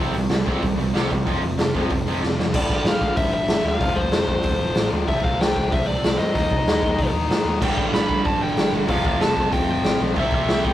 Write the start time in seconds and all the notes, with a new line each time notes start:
Already playing: C3 G3
0.00 C2 C4
0.12 C2 C3 G3, open hi-hat
0.29 C2 C3 G3, snare, open hi-hat
0.45 C2 C3 G3 C4, kick, open hi-hat
0.61 C2 C3 G3, kick, open hi-hat
0.76 C2 C3 G3, open hi-hat
0.94 C2 C3 G3 C4, snare, open hi-hat
1.10 C3 G3, kick, open hi-hat
1.26 F1 F2 C3 F3, kick, open hi-hat
1.42 F1 F2 C3, open hi-hat
1.58 F1 F2 C3, snare, open hi-hat
1.74 F1 F2 C3 F3, kick, open hi-hat
1.90 F1 F2 C3, kick, open hi-hat
2.06 F1 F2 C3 F3, open hi-hat
2.21 F1 F2 C3, snare
2.38 F2 C3, snare
2.53 G1 G2 D3 G3 D5, kick, crash
2.70 G1 D5, kick
2.85 G1 F5, snare, open hi-hat
3.01 G1, kick
3.16 G1 E5, kick, open hi-hat
3.34 E5
3.48 G1, snare, open hi-hat
3.64 D2
3.68 F5
3.79 F1 F2 C3 F3, kick, open hi-hat
3.96 D2 C5, kick
4.12 F1, snare, open hi-hat
4.28 F1, kick
4.43 D2, kick, open hi-hat
4.61 F1
4.75 A1, snare, open hi-hat
4.92 D2
5.06 C2 C3 G3 C4 E5, kick, open hi-hat
5.24 C2 F5, kick
5.41 C2 G5, snare, open hi-hat
5.56 C2, kick
5.72 C2 E5, kick, open hi-hat
5.87 D5
6.04 C2, snare, open hi-hat
6.19 G2 D#5
6.34 D#2 D#3 A#3 D#4, kick, open hi-hat
6.51 C3, kick
6.66 D#2, snare, open hi-hat
6.83 D#2, kick
6.99 C3, kick, open hi-hat
7.12 D#2
7.29 G2, snare, open hi-hat
7.45 D#2
7.59 G1 G2 D3 G3, kick, crash
7.64 G5
7.77 G1 G5, kick
7.93 G1 B5, snare, open hi-hat
8.09 G1, kick
8.24 G1 A5, kick, open hi-hat
8.42 G5
8.57 G1, snare, open hi-hat
8.73 G1
8.87 F1 F2 C3 F3 F5, kick, open hi-hat
9.05 D2 F5, kick
9.21 F1 A5, snare, open hi-hat
9.37 F1, kick
9.52 D2 G5, kick, open hi-hat
9.68 F1 G5
9.83 A1, snare, open hi-hat
9.99 B1
10.14 C2 C3 G3 C4, kick, open hi-hat
10.19 E5
10.32 C2 E5, kick
10.48 C2, snare, open hi-hat
10.65 C2 G5, kick